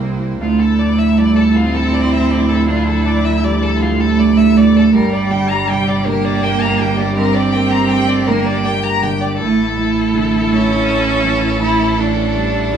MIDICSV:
0, 0, Header, 1, 7, 480
1, 0, Start_track
1, 0, Key_signature, -1, "minor"
1, 0, Tempo, 755668
1, 262, Time_signature, 6, 3, 24, 8
1, 3618, Tempo, 740741
1, 8202, End_track
2, 0, Start_track
2, 0, Title_t, "Violin"
2, 0, Program_c, 0, 40
2, 264, Note_on_c, 0, 65, 46
2, 380, Note_on_c, 0, 69, 53
2, 389, Note_off_c, 0, 65, 0
2, 507, Note_on_c, 0, 74, 61
2, 516, Note_off_c, 0, 69, 0
2, 627, Note_on_c, 0, 76, 53
2, 636, Note_off_c, 0, 74, 0
2, 749, Note_on_c, 0, 74, 63
2, 759, Note_off_c, 0, 76, 0
2, 867, Note_on_c, 0, 69, 57
2, 877, Note_off_c, 0, 74, 0
2, 992, Note_on_c, 0, 65, 62
2, 1001, Note_off_c, 0, 69, 0
2, 1109, Note_on_c, 0, 69, 65
2, 1119, Note_off_c, 0, 65, 0
2, 1232, Note_on_c, 0, 74, 65
2, 1242, Note_off_c, 0, 69, 0
2, 1350, Note_on_c, 0, 76, 58
2, 1359, Note_off_c, 0, 74, 0
2, 1467, Note_on_c, 0, 74, 57
2, 1477, Note_off_c, 0, 76, 0
2, 1584, Note_on_c, 0, 69, 54
2, 1593, Note_off_c, 0, 74, 0
2, 1695, Note_off_c, 0, 69, 0
2, 1699, Note_on_c, 0, 65, 55
2, 1827, Note_on_c, 0, 69, 59
2, 1836, Note_off_c, 0, 65, 0
2, 1943, Note_on_c, 0, 74, 70
2, 1953, Note_off_c, 0, 69, 0
2, 2061, Note_on_c, 0, 76, 61
2, 2071, Note_off_c, 0, 74, 0
2, 2186, Note_on_c, 0, 74, 66
2, 2196, Note_off_c, 0, 76, 0
2, 2305, Note_on_c, 0, 69, 62
2, 2315, Note_off_c, 0, 74, 0
2, 2431, Note_on_c, 0, 65, 60
2, 2441, Note_off_c, 0, 69, 0
2, 2542, Note_on_c, 0, 69, 62
2, 2551, Note_off_c, 0, 65, 0
2, 2667, Note_on_c, 0, 74, 62
2, 2676, Note_off_c, 0, 69, 0
2, 2779, Note_on_c, 0, 76, 65
2, 2788, Note_off_c, 0, 74, 0
2, 2903, Note_on_c, 0, 74, 64
2, 2912, Note_off_c, 0, 76, 0
2, 3028, Note_on_c, 0, 69, 56
2, 3037, Note_off_c, 0, 74, 0
2, 3138, Note_off_c, 0, 69, 0
2, 3142, Note_on_c, 0, 70, 52
2, 3262, Note_on_c, 0, 74, 60
2, 3271, Note_off_c, 0, 70, 0
2, 3373, Note_on_c, 0, 79, 69
2, 3383, Note_off_c, 0, 74, 0
2, 3494, Note_on_c, 0, 82, 64
2, 3504, Note_off_c, 0, 79, 0
2, 3617, Note_on_c, 0, 79, 75
2, 3627, Note_off_c, 0, 82, 0
2, 3739, Note_on_c, 0, 74, 63
2, 3749, Note_off_c, 0, 79, 0
2, 3861, Note_on_c, 0, 70, 69
2, 3871, Note_off_c, 0, 74, 0
2, 3977, Note_on_c, 0, 74, 70
2, 3987, Note_off_c, 0, 70, 0
2, 4094, Note_on_c, 0, 79, 78
2, 4103, Note_off_c, 0, 74, 0
2, 4215, Note_on_c, 0, 82, 70
2, 4225, Note_off_c, 0, 79, 0
2, 4331, Note_on_c, 0, 79, 65
2, 4340, Note_off_c, 0, 82, 0
2, 4447, Note_on_c, 0, 74, 65
2, 4457, Note_off_c, 0, 79, 0
2, 4563, Note_off_c, 0, 74, 0
2, 4566, Note_on_c, 0, 70, 66
2, 4687, Note_on_c, 0, 74, 64
2, 4696, Note_off_c, 0, 70, 0
2, 4804, Note_on_c, 0, 79, 65
2, 4814, Note_off_c, 0, 74, 0
2, 4922, Note_on_c, 0, 82, 66
2, 4932, Note_off_c, 0, 79, 0
2, 5042, Note_on_c, 0, 79, 78
2, 5052, Note_off_c, 0, 82, 0
2, 5167, Note_on_c, 0, 74, 69
2, 5177, Note_off_c, 0, 79, 0
2, 5284, Note_on_c, 0, 70, 66
2, 5293, Note_off_c, 0, 74, 0
2, 5408, Note_on_c, 0, 74, 75
2, 5418, Note_off_c, 0, 70, 0
2, 5531, Note_on_c, 0, 79, 76
2, 5540, Note_off_c, 0, 74, 0
2, 5654, Note_on_c, 0, 82, 77
2, 5664, Note_off_c, 0, 79, 0
2, 5779, Note_on_c, 0, 79, 69
2, 5788, Note_off_c, 0, 82, 0
2, 5897, Note_on_c, 0, 74, 64
2, 5907, Note_off_c, 0, 79, 0
2, 6013, Note_off_c, 0, 74, 0
2, 6017, Note_on_c, 0, 69, 66
2, 8152, Note_off_c, 0, 69, 0
2, 8177, Note_on_c, 0, 69, 58
2, 8202, Note_off_c, 0, 69, 0
2, 8202, End_track
3, 0, Start_track
3, 0, Title_t, "String section"
3, 0, Program_c, 1, 48
3, 0, Note_on_c, 1, 52, 68
3, 0, Note_on_c, 1, 64, 67
3, 0, Note_on_c, 1, 72, 69
3, 236, Note_off_c, 1, 52, 0
3, 236, Note_off_c, 1, 64, 0
3, 262, Note_on_c, 1, 53, 67
3, 262, Note_on_c, 1, 64, 61
3, 263, Note_off_c, 1, 72, 0
3, 263, Note_on_c, 1, 69, 57
3, 3116, Note_off_c, 1, 53, 0
3, 3116, Note_off_c, 1, 64, 0
3, 3116, Note_off_c, 1, 69, 0
3, 3137, Note_on_c, 1, 55, 67
3, 3139, Note_on_c, 1, 62, 62
3, 3139, Note_on_c, 1, 82, 66
3, 6011, Note_on_c, 1, 69, 75
3, 6013, Note_on_c, 1, 52, 79
3, 6014, Note_off_c, 1, 55, 0
3, 6014, Note_on_c, 1, 64, 74
3, 6015, Note_off_c, 1, 82, 0
3, 6016, Note_off_c, 1, 62, 0
3, 8202, Note_off_c, 1, 52, 0
3, 8202, Note_off_c, 1, 64, 0
3, 8202, Note_off_c, 1, 69, 0
3, 8202, End_track
4, 0, Start_track
4, 0, Title_t, "Viola"
4, 0, Program_c, 2, 41
4, 0, Note_on_c, 2, 60, 56
4, 105, Note_off_c, 2, 60, 0
4, 258, Note_on_c, 2, 64, 65
4, 3114, Note_off_c, 2, 64, 0
4, 3143, Note_on_c, 2, 67, 73
4, 5992, Note_off_c, 2, 67, 0
4, 6017, Note_on_c, 2, 64, 79
4, 7429, Note_off_c, 2, 64, 0
4, 7451, Note_on_c, 2, 61, 65
4, 8172, Note_on_c, 2, 64, 61
4, 8182, Note_off_c, 2, 61, 0
4, 8202, Note_off_c, 2, 64, 0
4, 8202, End_track
5, 0, Start_track
5, 0, Title_t, "Cello"
5, 0, Program_c, 3, 42
5, 0, Note_on_c, 3, 58, 88
5, 263, Note_on_c, 3, 57, 82
5, 272, Note_off_c, 3, 58, 0
5, 982, Note_on_c, 3, 60, 107
5, 992, Note_off_c, 3, 57, 0
5, 1703, Note_on_c, 3, 62, 84
5, 1712, Note_off_c, 3, 60, 0
5, 2181, Note_off_c, 3, 62, 0
5, 2185, Note_on_c, 3, 53, 85
5, 2432, Note_on_c, 3, 57, 110
5, 2442, Note_off_c, 3, 53, 0
5, 3144, Note_on_c, 3, 55, 107
5, 3153, Note_off_c, 3, 57, 0
5, 3860, Note_on_c, 3, 58, 114
5, 3870, Note_off_c, 3, 55, 0
5, 4565, Note_off_c, 3, 58, 0
5, 4569, Note_on_c, 3, 60, 115
5, 5292, Note_on_c, 3, 58, 109
5, 5302, Note_off_c, 3, 60, 0
5, 5533, Note_off_c, 3, 58, 0
5, 6023, Note_on_c, 3, 57, 109
5, 6244, Note_off_c, 3, 57, 0
5, 6266, Note_on_c, 3, 57, 101
5, 6744, Note_on_c, 3, 61, 127
5, 6753, Note_off_c, 3, 57, 0
5, 7453, Note_off_c, 3, 61, 0
5, 7457, Note_on_c, 3, 64, 108
5, 7702, Note_on_c, 3, 62, 97
5, 7712, Note_off_c, 3, 64, 0
5, 8195, Note_off_c, 3, 62, 0
5, 8202, End_track
6, 0, Start_track
6, 0, Title_t, "Felt piano"
6, 0, Program_c, 4, 0
6, 0, Control_c, 4, 64, 127
6, 0, Note_on_c, 4, 36, 55
6, 0, Note_on_c, 4, 43, 43
6, 0, Note_on_c, 4, 64, 39
6, 0, Note_on_c, 4, 72, 44
6, 0, Note_on_c, 4, 76, 55
6, 16, Note_on_c, 4, 60, 46
6, 164, Note_off_c, 4, 64, 0
6, 233, Note_off_c, 4, 36, 0
6, 261, Note_off_c, 4, 60, 0
6, 262, Note_on_c, 4, 38, 56
6, 274, Control_c, 4, 64, 0
6, 279, Note_off_c, 4, 72, 0
6, 279, Note_off_c, 4, 76, 0
6, 281, Note_off_c, 4, 43, 0
6, 367, Control_c, 4, 64, 127
6, 503, Note_on_c, 4, 45, 47
6, 746, Note_on_c, 4, 43, 49
6, 890, Note_off_c, 4, 45, 0
6, 984, Note_on_c, 4, 45, 52
6, 986, Note_off_c, 4, 43, 0
6, 1225, Note_on_c, 4, 57, 44
6, 1367, Note_off_c, 4, 45, 0
6, 1459, Note_on_c, 4, 45, 60
6, 1608, Note_off_c, 4, 57, 0
6, 1679, Note_off_c, 4, 38, 0
6, 1701, Note_on_c, 4, 38, 55
6, 1718, Control_c, 4, 64, 0
6, 1818, Control_c, 4, 64, 127
6, 1847, Note_off_c, 4, 45, 0
6, 1947, Note_on_c, 4, 57, 43
6, 2177, Note_on_c, 4, 55, 54
6, 2329, Note_off_c, 4, 57, 0
6, 2417, Note_on_c, 4, 45, 49
6, 2420, Note_off_c, 4, 55, 0
6, 2654, Note_on_c, 4, 57, 55
6, 2802, Note_off_c, 4, 45, 0
6, 2896, Note_on_c, 4, 45, 58
6, 3041, Note_off_c, 4, 57, 0
6, 3114, Note_off_c, 4, 38, 0
6, 3132, Note_on_c, 4, 43, 65
6, 3139, Note_off_c, 4, 45, 0
6, 3153, Control_c, 4, 64, 0
6, 3263, Control_c, 4, 64, 127
6, 3368, Note_on_c, 4, 50, 48
6, 3608, Note_on_c, 4, 48, 50
6, 3754, Note_off_c, 4, 50, 0
6, 3847, Note_on_c, 4, 50, 58
6, 3852, Note_off_c, 4, 48, 0
6, 4083, Note_on_c, 4, 58, 56
6, 4235, Note_off_c, 4, 50, 0
6, 4328, Note_on_c, 4, 50, 63
6, 4473, Note_off_c, 4, 58, 0
6, 4545, Note_off_c, 4, 43, 0
6, 4575, Note_on_c, 4, 43, 63
6, 4586, Control_c, 4, 64, 0
6, 4684, Control_c, 4, 64, 127
6, 4715, Note_off_c, 4, 50, 0
6, 4810, Note_on_c, 4, 58, 48
6, 5053, Note_on_c, 4, 57, 57
6, 5195, Note_off_c, 4, 58, 0
6, 5293, Note_off_c, 4, 57, 0
6, 5293, Note_on_c, 4, 50, 58
6, 5536, Note_on_c, 4, 58, 61
6, 5678, Note_off_c, 4, 50, 0
6, 5773, Note_on_c, 4, 50, 64
6, 5921, Note_off_c, 4, 58, 0
6, 5990, Note_off_c, 4, 43, 0
6, 6008, Note_on_c, 4, 45, 68
6, 6016, Note_off_c, 4, 50, 0
6, 6029, Control_c, 4, 64, 0
6, 6139, Control_c, 4, 64, 127
6, 6255, Note_on_c, 4, 52, 46
6, 6498, Note_on_c, 4, 50, 59
6, 6639, Note_off_c, 4, 52, 0
6, 6736, Note_off_c, 4, 50, 0
6, 6736, Note_on_c, 4, 52, 50
6, 6977, Note_on_c, 4, 57, 60
6, 7118, Note_off_c, 4, 52, 0
6, 7211, Note_on_c, 4, 52, 62
6, 7360, Note_off_c, 4, 57, 0
6, 7425, Note_off_c, 4, 45, 0
6, 7441, Note_on_c, 4, 45, 65
6, 7468, Control_c, 4, 64, 0
6, 7592, Control_c, 4, 64, 127
6, 7599, Note_off_c, 4, 52, 0
6, 7691, Note_on_c, 4, 57, 51
6, 7931, Note_on_c, 4, 55, 50
6, 8078, Note_off_c, 4, 57, 0
6, 8172, Note_on_c, 4, 52, 51
6, 8175, Note_off_c, 4, 55, 0
6, 8202, Note_off_c, 4, 45, 0
6, 8202, Note_off_c, 4, 52, 0
6, 8202, End_track
7, 0, Start_track
7, 0, Title_t, "Double bass"
7, 0, Program_c, 5, 43
7, 0, Note_on_c, 5, 36, 71
7, 253, Note_off_c, 5, 36, 0
7, 257, Note_on_c, 5, 38, 66
7, 3141, Note_on_c, 5, 31, 72
7, 3151, Note_off_c, 5, 38, 0
7, 6016, Note_on_c, 5, 33, 87
7, 6026, Note_off_c, 5, 31, 0
7, 8202, Note_off_c, 5, 33, 0
7, 8202, End_track
0, 0, End_of_file